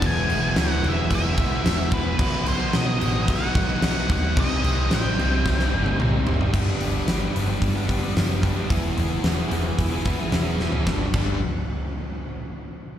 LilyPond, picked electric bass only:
\new Staff \with { instrumentName = "Picked electric bass" } { \clef bass \time 4/4 \key g \major \tempo 4 = 111 e,,8 e,,8 d,8 e,,8 e,,8 b,,8 e,,8 e,,8 | b,,8 b,,8 b,8 a,,8 b,,8 b,,8 b,,8 dis,8 | c,8 c,8 a,,8 c,8 c,8 g,,8 c,8 fis,,8 | g,,8 g,,8 g,,8 g,,8 g,,4 fis,,4 |
e,,8 e,,8 e,,8 e,,8 e,,4 e,,4 | g,,8 g,,8 r2. | }